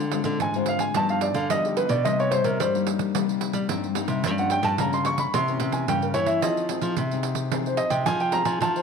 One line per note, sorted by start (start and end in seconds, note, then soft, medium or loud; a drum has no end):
0.00 0.21 D3 medium
0.00 0.39 D3 medium
0.00 pandeiro soft
0.12 0.50 G#3 medium
0.12 0.50 C4 medium
0.12 0.50 F4 medium
0.12 pandeiro medium
0.24 0.38 D3 loud
0.24 pandeiro medium
0.40 0.88 G#2 medium
0.40 0.93 D3 medium
0.40 0.55 G#5 medium
0.40 pandeiro medium
0.54 0.92 G#3 medium
0.54 0.92 C4 medium
0.54 0.92 F4 medium
0.54 0.69 C5 medium
0.54 pandeiro soft
0.66 0.82 F5 medium
0.66 pandeiro medium
0.79 0.95 G#5 medium
0.79 pandeiro medium
0.94 1.31 G2 medium
0.94 1.48 G2 medium
0.94 1.31 F3 medium
0.94 1.32 B3 medium
0.94 1.32 D#4 medium
0.94 1.10 A5 loud
0.94 pandeiro medium
1.09 1.23 F5 medium
1.09 pandeiro soft
1.21 1.36 D5 medium
1.21 pandeiro medium
1.34 1.47 D3 loud
1.34 1.50 F5 medium
1.34 pandeiro medium
1.50 2.03 D3 medium
1.50 1.74 F3 medium
1.50 1.86 G3 medium
1.50 1.74 B3 medium
1.50 1.74 D#4 medium
1.50 1.64 D#5 medium
1.50 pandeiro medium
1.65 1.78 G4 soft
1.65 pandeiro soft
1.77 1.95 F3 medium
1.77 1.95 B3 medium
1.77 1.95 D#4 medium
1.77 1.91 B4 medium
1.77 pandeiro medium
1.89 2.05 B2 medium
1.89 2.04 D5 medium
1.89 pandeiro medium
2.05 2.57 C3 medium
2.05 2.40 C3 medium
2.05 2.28 G3 medium
2.05 2.29 A#3 medium
2.05 2.29 D#4 medium
2.05 2.18 D#5 medium
2.05 pandeiro medium
2.20 2.33 C#5 medium
2.20 pandeiro soft
2.31 2.58 G3 medium
2.31 2.58 A#3 medium
2.31 2.58 D#4 medium
2.31 2.45 C5 medium
2.31 pandeiro medium
2.44 2.57 C3 loud
2.44 2.59 A#4 medium
2.44 pandeiro medium
2.60 3.12 G2 medium
2.60 3.41 G3 medium
2.60 2.77 C5 medium
2.60 pandeiro medium
2.74 3.11 G3 medium
2.74 3.11 A#3 medium
2.74 3.11 D#4 medium
2.74 pandeiro soft
2.87 pandeiro medium
2.99 pandeiro medium
3.15 3.67 C3 medium
3.15 3.65 G3 medium
3.15 3.66 A#3 medium
3.15 3.66 D#4 medium
3.15 pandeiro medium
3.29 pandeiro soft
3.41 pandeiro medium
3.53 3.66 G3 medium
3.53 pandeiro medium
3.69 4.22 G2 medium
3.69 3.86 G3 soft
3.69 3.86 A#3 medium
3.69 4.04 C4 medium
3.69 3.86 D#4 medium
3.69 pandeiro medium
3.84 pandeiro soft
3.95 4.22 G3 medium
3.95 4.22 A#3 medium
3.95 4.22 D#4 medium
3.95 pandeiro medium
4.08 4.23 C3 medium
4.08 pandeiro medium
4.24 4.59 G2 medium
4.24 4.77 G2 medium
4.24 4.34 F3 medium
4.24 4.34 A#3 medium
4.24 4.34 C#4 medium
4.24 pandeiro medium
4.38 4.75 F3 medium
4.38 4.75 A#3 medium
4.38 4.75 C#4 medium
4.38 4.52 F#5 medium
4.38 pandeiro soft
4.50 4.65 G5 medium
4.50 pandeiro medium
4.63 4.76 G2 loud
4.63 4.78 A5 medium
4.63 pandeiro medium
4.78 5.31 G2 medium
4.78 5.25 C#3 medium
4.78 4.95 F3 medium
4.78 4.95 A#3 medium
4.78 4.96 C#4 medium
4.78 4.93 A#5 medium
4.78 pandeiro medium
4.93 5.06 C6 medium
4.93 pandeiro soft
5.05 5.24 F3 medium
5.05 5.24 A#3 medium
5.05 5.24 C#4 medium
5.05 5.19 C#6 loud
5.05 pandeiro medium
5.18 5.33 B5 medium
5.18 pandeiro medium
5.34 5.57 C3 medium
5.34 5.86 C3 medium
5.34 5.43 E3 medium
5.34 5.43 A#3 medium
5.34 5.44 C#4 medium
5.34 5.72 C6 loud
5.34 pandeiro medium
5.48 5.84 E3 medium
5.48 5.84 A#3 medium
5.48 5.85 C#4 medium
5.48 pandeiro soft
5.60 5.85 C3 medium
5.60 pandeiro medium
5.72 5.87 G#5 medium
5.72 pandeiro medium
5.88 6.40 G2 medium
5.88 6.13 C#3 medium
5.88 6.04 E3 medium
5.88 6.05 A#3 medium
5.88 6.05 C#4 medium
5.88 6.02 G5 medium
5.88 pandeiro medium
6.02 6.16 A#4 medium
6.02 pandeiro soft
6.14 6.43 E3 medium
6.14 6.41 E3 medium
6.14 6.41 A#3 medium
6.14 6.41 C#4 medium
6.14 6.28 C#5 medium
6.14 pandeiro medium
6.26 6.41 E5 medium
6.26 pandeiro medium
6.42 6.78 F3 medium
6.42 6.95 F3 medium
6.42 6.66 C4 medium
6.42 6.66 D#4 medium
6.42 6.66 G#4 medium
6.42 6.59 D#5 medium
6.42 pandeiro medium
6.57 pandeiro soft
6.69 6.96 C4 medium
6.69 6.96 D#4 medium
6.69 6.96 G#4 medium
6.69 pandeiro medium
6.81 6.95 F3 loud
6.81 pandeiro soft
6.97 7.79 C3 medium
6.97 7.50 C3 medium
6.97 pandeiro medium
7.11 7.49 C4 medium
7.11 7.49 D#4 medium
7.11 7.49 G#4 medium
7.11 pandeiro soft
7.23 pandeiro medium
7.35 pandeiro medium
7.52 8.04 F3 medium
7.52 8.03 C4 medium
7.52 8.03 D#4 medium
7.52 8.03 G#4 medium
7.52 pandeiro medium
7.66 7.80 C5 medium
7.66 pandeiro soft
7.77 7.92 D#5 medium
7.77 pandeiro medium
7.90 8.03 C3 medium
7.90 8.05 G5 medium
7.90 pandeiro medium
8.06 8.59 C3 medium
8.06 8.41 F3 loud
8.06 8.23 C4 medium
8.06 8.23 D#4 medium
8.06 8.24 G#4 medium
8.06 8.20 G#5 loud
8.06 pandeiro medium
8.20 8.34 G5 medium
8.20 pandeiro soft
8.32 8.59 C4 medium
8.32 8.59 D#4 medium
8.32 8.60 G#4 medium
8.32 8.47 A#5 loud
8.32 pandeiro medium
8.45 8.58 F3 medium
8.45 8.60 G#5 medium
8.45 pandeiro medium
8.61 8.82 F3 medium
8.61 8.78 D#4 medium
8.61 8.78 F#4 medium
8.61 8.78 A4 medium
8.61 8.75 A5 medium
8.61 pandeiro medium
8.76 8.82 C5 medium
8.76 pandeiro soft